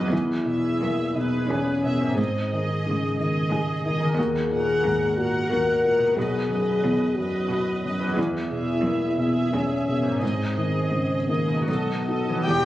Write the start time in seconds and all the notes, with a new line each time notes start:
Already playing: B1 E2 F#2 D#4 F#4 B4 D#5
0.00 E3 B3
0.07 G#4
0.11 E2 E4
0.46 B2 G#4 E5
0.81 E2 A#3
1.15 B2 D#4 G#4 B4
1.48 E2 C#4 G#4
1.84 B2 G#4 E5
2.00 G#2
2.05 C4
2.09 D#4
2.14 C4 G#4
2.18 G#2 D#5
2.52 D#3 G#4 D#5
2.83 G#2 C#3 G#3
3.19 D#3 G#4 D#5
3.51 G#2 G#4
3.85 D#3 G#4 D#5
4.00 D#3
4.05 A#3
4.09 D#4
4.13 F#4
4.18 D#2 G#4
4.51 A#2 A#4 F#5
4.84 D#2 G#2
5.17 A#2 F#4 A#4 F#5
5.49 D#2 F#4 A#4
5.84 A#2 A#4 F#5
5.98 B2
6.03 B3
6.08 D#4
6.12 F#4 G#4
6.16 B1 B2 B4 D#5
6.50 F#2 B4 D#5
6.84 E2 B2
7.17 F#2 F#4 B4 D#5
7.51 B2 F#4
7.83 F#2 B4 D#5
8.00 E2
8.04 B3
8.09 E4
8.13 E2 E4 G#4
8.51 B2 G#4 E5
8.84 E2 A#3
9.17 B2 G#4 E5
9.52 E2 C#4 G#4
9.87 B2 G#4 E5
10.03 G#2
10.07 G#3
10.12 D#4
10.16 G#4
10.20 G#2 C4 G#4 D#5
10.55 D#3 G#4 D#5
10.91 G#2 C#3
11.28 D#3 A#3 G#4 D#5
11.48 B2
11.52 A3
11.57 D#4
11.62 F#4
11.67 B1 B2 B3 A4 D#5
12.08 D#4 F#4 A4 D#5
12.29 E3
12.33 B3
12.38 E4
12.42 G4
12.47 E1 E2 G4 G5